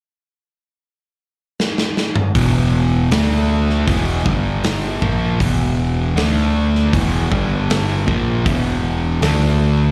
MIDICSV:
0, 0, Header, 1, 4, 480
1, 0, Start_track
1, 0, Tempo, 761421
1, 1486, Time_signature, 4, 2, 24, 8
1, 6250, End_track
2, 0, Start_track
2, 0, Title_t, "Distorted electric guitar"
2, 0, Program_c, 0, 30
2, 1486, Note_on_c, 0, 40, 104
2, 1490, Note_on_c, 0, 47, 102
2, 1492, Note_on_c, 0, 52, 112
2, 1959, Note_off_c, 0, 40, 0
2, 1961, Note_off_c, 0, 47, 0
2, 1961, Note_off_c, 0, 52, 0
2, 1966, Note_on_c, 0, 50, 93
2, 1967, Note_on_c, 0, 57, 102
2, 1974, Note_on_c, 0, 62, 94
2, 2438, Note_on_c, 0, 40, 96
2, 2439, Note_off_c, 0, 50, 0
2, 2439, Note_off_c, 0, 57, 0
2, 2443, Note_off_c, 0, 62, 0
2, 2447, Note_on_c, 0, 47, 108
2, 2451, Note_on_c, 0, 52, 98
2, 2674, Note_off_c, 0, 40, 0
2, 2678, Note_on_c, 0, 43, 81
2, 2679, Note_off_c, 0, 47, 0
2, 2681, Note_off_c, 0, 52, 0
2, 2686, Note_on_c, 0, 50, 91
2, 2689, Note_on_c, 0, 55, 82
2, 3155, Note_off_c, 0, 43, 0
2, 3158, Note_off_c, 0, 50, 0
2, 3160, Note_off_c, 0, 55, 0
2, 3160, Note_on_c, 0, 46, 78
2, 3166, Note_on_c, 0, 53, 90
2, 3170, Note_on_c, 0, 58, 87
2, 3396, Note_off_c, 0, 46, 0
2, 3399, Note_off_c, 0, 53, 0
2, 3401, Note_off_c, 0, 58, 0
2, 3405, Note_on_c, 0, 40, 101
2, 3406, Note_on_c, 0, 47, 99
2, 3409, Note_on_c, 0, 52, 110
2, 3878, Note_off_c, 0, 40, 0
2, 3879, Note_off_c, 0, 47, 0
2, 3880, Note_off_c, 0, 52, 0
2, 3884, Note_on_c, 0, 57, 93
2, 3885, Note_on_c, 0, 50, 90
2, 3891, Note_on_c, 0, 62, 100
2, 4358, Note_off_c, 0, 50, 0
2, 4358, Note_off_c, 0, 57, 0
2, 4361, Note_off_c, 0, 62, 0
2, 4371, Note_on_c, 0, 40, 107
2, 4380, Note_on_c, 0, 47, 101
2, 4384, Note_on_c, 0, 52, 109
2, 4602, Note_off_c, 0, 40, 0
2, 4606, Note_off_c, 0, 47, 0
2, 4608, Note_off_c, 0, 52, 0
2, 4610, Note_on_c, 0, 43, 90
2, 4616, Note_on_c, 0, 50, 92
2, 4619, Note_on_c, 0, 55, 92
2, 5081, Note_off_c, 0, 43, 0
2, 5081, Note_off_c, 0, 50, 0
2, 5083, Note_on_c, 0, 46, 91
2, 5086, Note_off_c, 0, 55, 0
2, 5092, Note_on_c, 0, 53, 84
2, 5093, Note_on_c, 0, 58, 111
2, 5318, Note_off_c, 0, 46, 0
2, 5322, Note_off_c, 0, 53, 0
2, 5323, Note_off_c, 0, 58, 0
2, 5326, Note_on_c, 0, 40, 102
2, 5333, Note_on_c, 0, 47, 111
2, 5341, Note_on_c, 0, 52, 127
2, 5800, Note_off_c, 0, 40, 0
2, 5803, Note_off_c, 0, 47, 0
2, 5807, Note_off_c, 0, 52, 0
2, 5808, Note_on_c, 0, 50, 103
2, 5813, Note_on_c, 0, 57, 100
2, 5816, Note_on_c, 0, 62, 91
2, 6250, Note_off_c, 0, 50, 0
2, 6250, Note_off_c, 0, 57, 0
2, 6250, Note_off_c, 0, 62, 0
2, 6250, End_track
3, 0, Start_track
3, 0, Title_t, "Fingered electric bass"
3, 0, Program_c, 1, 33
3, 1482, Note_on_c, 1, 28, 97
3, 1938, Note_off_c, 1, 28, 0
3, 1962, Note_on_c, 1, 38, 85
3, 2419, Note_off_c, 1, 38, 0
3, 2445, Note_on_c, 1, 28, 92
3, 2668, Note_off_c, 1, 28, 0
3, 2684, Note_on_c, 1, 31, 89
3, 3140, Note_off_c, 1, 31, 0
3, 3166, Note_on_c, 1, 34, 84
3, 3389, Note_off_c, 1, 34, 0
3, 3407, Note_on_c, 1, 28, 97
3, 3862, Note_off_c, 1, 28, 0
3, 3881, Note_on_c, 1, 38, 91
3, 4338, Note_off_c, 1, 38, 0
3, 4371, Note_on_c, 1, 28, 90
3, 4592, Note_off_c, 1, 28, 0
3, 4613, Note_on_c, 1, 31, 100
3, 5065, Note_off_c, 1, 31, 0
3, 5095, Note_on_c, 1, 34, 92
3, 5314, Note_off_c, 1, 34, 0
3, 5330, Note_on_c, 1, 28, 105
3, 5783, Note_off_c, 1, 28, 0
3, 5810, Note_on_c, 1, 38, 82
3, 6250, Note_off_c, 1, 38, 0
3, 6250, End_track
4, 0, Start_track
4, 0, Title_t, "Drums"
4, 1008, Note_on_c, 9, 38, 71
4, 1071, Note_off_c, 9, 38, 0
4, 1123, Note_on_c, 9, 38, 73
4, 1186, Note_off_c, 9, 38, 0
4, 1244, Note_on_c, 9, 38, 72
4, 1307, Note_off_c, 9, 38, 0
4, 1359, Note_on_c, 9, 45, 95
4, 1422, Note_off_c, 9, 45, 0
4, 1482, Note_on_c, 9, 36, 107
4, 1483, Note_on_c, 9, 46, 57
4, 1545, Note_off_c, 9, 36, 0
4, 1546, Note_off_c, 9, 46, 0
4, 1963, Note_on_c, 9, 46, 57
4, 1968, Note_on_c, 9, 38, 101
4, 2026, Note_off_c, 9, 46, 0
4, 2031, Note_off_c, 9, 38, 0
4, 2331, Note_on_c, 9, 38, 31
4, 2394, Note_off_c, 9, 38, 0
4, 2443, Note_on_c, 9, 36, 103
4, 2447, Note_on_c, 9, 46, 56
4, 2506, Note_off_c, 9, 36, 0
4, 2510, Note_off_c, 9, 46, 0
4, 2684, Note_on_c, 9, 36, 116
4, 2747, Note_off_c, 9, 36, 0
4, 2924, Note_on_c, 9, 46, 62
4, 2929, Note_on_c, 9, 38, 106
4, 2987, Note_off_c, 9, 46, 0
4, 2992, Note_off_c, 9, 38, 0
4, 3165, Note_on_c, 9, 36, 92
4, 3228, Note_off_c, 9, 36, 0
4, 3406, Note_on_c, 9, 36, 100
4, 3411, Note_on_c, 9, 46, 56
4, 3469, Note_off_c, 9, 36, 0
4, 3474, Note_off_c, 9, 46, 0
4, 3890, Note_on_c, 9, 46, 46
4, 3895, Note_on_c, 9, 38, 97
4, 3953, Note_off_c, 9, 46, 0
4, 3958, Note_off_c, 9, 38, 0
4, 4256, Note_on_c, 9, 38, 30
4, 4319, Note_off_c, 9, 38, 0
4, 4371, Note_on_c, 9, 36, 109
4, 4374, Note_on_c, 9, 46, 48
4, 4434, Note_off_c, 9, 36, 0
4, 4437, Note_off_c, 9, 46, 0
4, 4612, Note_on_c, 9, 36, 109
4, 4675, Note_off_c, 9, 36, 0
4, 4855, Note_on_c, 9, 46, 56
4, 4860, Note_on_c, 9, 38, 114
4, 4918, Note_off_c, 9, 46, 0
4, 4923, Note_off_c, 9, 38, 0
4, 5093, Note_on_c, 9, 36, 96
4, 5156, Note_off_c, 9, 36, 0
4, 5333, Note_on_c, 9, 36, 108
4, 5334, Note_on_c, 9, 46, 51
4, 5396, Note_off_c, 9, 36, 0
4, 5397, Note_off_c, 9, 46, 0
4, 5814, Note_on_c, 9, 46, 52
4, 5819, Note_on_c, 9, 38, 93
4, 5877, Note_off_c, 9, 46, 0
4, 5882, Note_off_c, 9, 38, 0
4, 6250, End_track
0, 0, End_of_file